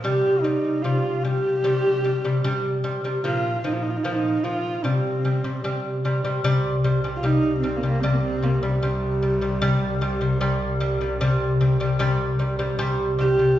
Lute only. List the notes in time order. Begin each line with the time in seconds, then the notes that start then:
0.04 C3 G3
0.44 C3 G3
0.84 C3 G3
1.24 C3 G3
1.64 C3 G3
2.04 C3 G3
2.24 C3 G3
2.44 C3 G3
2.84 C3 G3
3.04 C3 G3
3.24 A#2 F3
3.64 A#2 F3
4.04 A#2 F3
4.44 A#2 F3
4.84 C3 G3
5.24 C3 G3
5.44 C3 G3
5.64 C3 G3
6.05 C3 G3
6.25 C3 G3
6.44 C3 G3
6.84 C3 G3
7.04 C3 G3
7.23 C3 G3
7.63 C3 G3
7.83 C3 G3
8.03 C3 G3
8.42 C3 G3
8.63 C3 G3
8.82 C3 G3
9.22 C3 G3
9.41 C3 G3
9.62 C3 G3
10.01 C3 G3
10.21 C3 G3
10.41 C3 G3
10.80 C3 G3
11.01 C3 G3
11.21 C3 G3
11.61 C3 G3
11.80 C3 G3
11.99 C3 G3
12.39 C3 G3
12.59 C3 G3
12.79 C3 G3
13.19 C3 G3
13.39 C3 G3